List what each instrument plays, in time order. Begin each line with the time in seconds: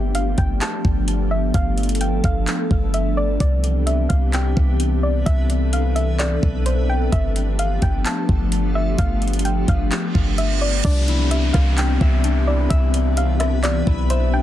Already playing: 808-style bass G1, ambient pad F3 A3 B3 D4 G4, synth pluck E5
0.15 synth pluck F5, closed hi-hat
0.38 808-style bass G1, synth pluck G5, kick, closed hi-hat
0.61 synth pluck A5, clap, closed hi-hat
0.85 808-style bass G1, kick
1.08 closed hi-hat
1.31 synth pluck E5
1.54 808-style bass G1, ambient pad A4, synth pluck F5, kick, closed hi-hat
1.78 closed hi-hat
1.83 closed hi-hat
1.89 closed hi-hat
1.95 closed hi-hat
2.01 synth pluck G5, closed hi-hat
2.24 808-style bass G1, synth pluck F5, kick, closed hi-hat
2.47 clap, closed hi-hat
2.71 808-style bass G1, kick
2.94 synth pluck E5, closed hi-hat
3.17 synth pluck D5
3.40 808-style bass C2, ambient pad E3 C4 G4, synth texture D4 B4 E5, synth pluck D5, kick, closed hi-hat
3.64 closed hi-hat
3.87 synth pluck E5, closed hi-hat
4.09 808-style bass C2, synth pluck F5, kick, closed hi-hat
4.33 synth pluck G5, clap, closed hi-hat
4.57 808-style bass C2, kick
4.80 closed hi-hat
5.03 synth pluck D5
5.26 808-style bass C2, ambient pad A4, synth pluck E5, kick, closed hi-hat
5.50 closed hi-hat
5.73 synth pluck F5, closed hi-hat
5.96 synth pluck E5, closed hi-hat
6.19 synth pluck D5, clap, closed hi-hat
6.43 808-style bass B1, kick
6.66 synth pluck C5, closed hi-hat
6.89 synth pluck G5
7.12 808-style bass G1, ambient pad F3 A3 B3 D4 G4, synth texture B3 F4 A4, synth pluck E5, kick, closed hi-hat
7.36 closed hi-hat
7.59 synth pluck F5, closed hi-hat
7.82 808-style bass G1, synth pluck G5, kick, closed hi-hat
8.06 synth pluck A5, clap, closed hi-hat
8.29 808-style bass G1, kick
8.52 closed hi-hat
8.75 synth pluck E5
8.98 808-style bass G1, synth texture G4, synth pluck F5, kick, closed hi-hat
9.22 closed hi-hat
9.28 closed hi-hat
9.33 closed hi-hat
9.39 closed hi-hat
9.45 synth pluck G5, closed hi-hat
9.68 808-style bass G1, synth pluck F5, kick, closed hi-hat
9.92 clap, closed hi-hat, reverse cymbal
10.15 808-style bass G1, kick
10.38 synth pluck E5, closed hi-hat
10.61 synth pluck D5
10.84 808-style bass C2, ambient pad E3 B3 C4 D4 G4, synth texture D4 B4 E5, harp D4, synth pluck D5, kick, closed hi-hat, crash, downlifter
11.08 harp E4, closed hi-hat
11.31 synth pluck E5, closed hi-hat
11.53 808-style bass C2, synth pluck F5, kick, cross-stick, closed hi-hat
11.78 synth pluck G5, clap, closed hi-hat
12.01 808-style bass C2, harp E5, kick
12.24 harp D4, closed hi-hat
12.47 harp E4, synth pluck D5
12.70 808-style bass C2, synth pluck E5, harp E5, kick, closed hi-hat
12.94 closed hi-hat
13.17 synth pluck F5, closed hi-hat
13.40 synth pluck E5, cross-stick, closed hi-hat
13.63 synth pluck D5, clap, closed hi-hat
13.87 808-style bass B1, harp E4, kick
14.10 synth pluck C5, harp E5, closed hi-hat
14.33 harp D4, synth pluck G5